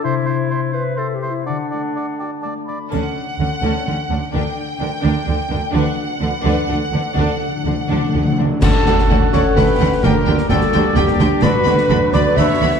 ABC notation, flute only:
X:1
M:3/4
L:1/8
Q:1/4=127
K:Dmix
V:1 name="Flute"
e e e e e e | f f f g a b | [K:F#phr] z6 | z6 |
z6 | z6 | a3 c' b2 | _b2 a2 g2 |
b3 d' e'2 |]